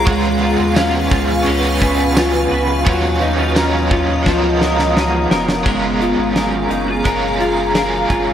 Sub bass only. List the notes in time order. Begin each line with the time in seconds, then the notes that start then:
0.07 C#2
0.59 D#2
1.12 C#2
1.47 C#2
2.51 C#2
2.87 D#2
4.26 C#2
5.31 F1
5.66 F#1
6.18 G#1
6.70 F#1
7.05 F#1
8.10 F#1